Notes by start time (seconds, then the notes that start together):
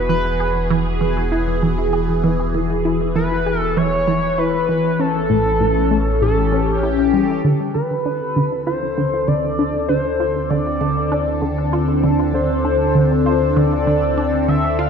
Already playing: E1 E3 B3 F#4 G#4
0.09 E3 B4
0.40 G#4
0.70 E3
1.01 E3
1.32 E4
1.63 E3
1.93 G#4
2.24 E3
2.54 E3
2.85 E4
3.16 E3 B4
3.46 G#4
3.60 A4
3.77 E3 C#5
4.08 E3
4.38 E4 B4
4.69 E3
4.99 A1 C#4 A4
5.30 A2
5.37 C#4
5.60 A2
5.91 A3
6.09 G4 A4
6.21 A2 A4
6.52 C#4
6.83 E4 G4
7.14 G3
7.43 D2 D3 E3 E6
7.69 C4
7.74 D3 B4
8.06 D4
8.36 D3
8.64 D4 F4 C5
8.98 D3
9.27 D3 D5
9.59 D4
9.88 D3 C5
10.20 F4
10.50 D3 D5
10.81 D3
11.12 D4
11.42 D3
11.73 F4
12.04 D3
12.34 D3 C5
12.65 D4
12.95 D3
13.26 F4 C5
13.56 D3 D5
13.87 D3
14.18 D4
14.49 D3 E5
14.79 F4 F5